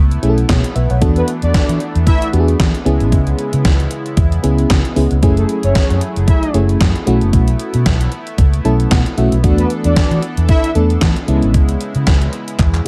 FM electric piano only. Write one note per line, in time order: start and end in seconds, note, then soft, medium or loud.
0.22 0.63 A3 medium
0.22 0.63 C#4 medium
0.22 0.63 E4 medium
0.22 0.30 G#4 medium
0.29 0.52 A4 medium
0.49 0.74 G#4 medium
0.49 0.74 C#5 medium
0.75 0.90 B4 medium
0.75 0.89 E5 medium
0.90 1.15 C#5 medium
0.90 1.15 F#5 medium
1.01 1.80 B3 medium
1.01 1.80 D4 medium
1.01 1.80 F#4 medium
1.01 1.80 A4 loud
2.33 2.74 B3 medium
2.33 2.74 D4 medium
2.33 2.74 F#4 medium
2.33 2.40 G4 medium
2.40 2.77 G#4 loud
2.85 3.70 B3 loud
2.85 3.71 C#4 medium
2.85 3.71 E4 medium
2.85 3.71 G#4 loud
4.43 4.84 B3 medium
4.43 4.84 C#4 medium
4.43 4.84 E4 medium
4.43 4.84 G#4 loud
4.96 5.17 B3 medium
4.96 5.17 C#4 medium
4.96 5.17 E4 medium
4.96 5.17 G#4 medium
5.23 6.01 A3 medium
5.23 6.01 C#4 medium
5.23 6.01 E4 medium
5.23 6.01 G#4 loud
6.54 6.95 A3 medium
6.54 6.95 C#4 medium
6.54 6.95 E4 medium
6.54 6.95 G#4 medium
7.06 7.92 A3 loud
7.06 7.92 C#4 medium
7.06 7.92 E4 medium
7.06 7.92 F#4 loud
8.64 9.05 A3 medium
8.64 9.05 C#4 medium
8.64 9.06 E4 medium
8.64 9.06 A4 medium
8.64 8.89 A5 medium
8.91 9.16 F#5 medium
9.17 9.38 A3 medium
9.17 9.38 C#4 medium
9.17 9.38 E4 medium
9.17 9.38 F#4 medium
9.17 9.42 E5 medium
9.43 10.22 A3 loud
9.43 10.22 B3 medium
9.43 10.22 D4 medium
9.43 10.22 F#4 loud
10.75 11.16 A3 medium
10.75 11.16 B3 medium
10.75 11.16 D4 medium
10.75 11.16 A4 loud
11.28 12.13 G#3 loud
11.28 12.13 B3 medium
11.28 12.13 C#4 medium
11.28 12.13 E4 loud